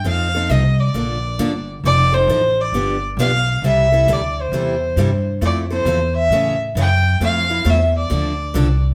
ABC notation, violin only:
X:1
M:4/4
L:1/8
Q:"Swing" 1/4=134
K:F
V:1 name="Violin"
f2 _e d4 z | d c2 d2 z f2 | e2 d c4 z | d c2 e2 z g2 |
f2 e d4 z |]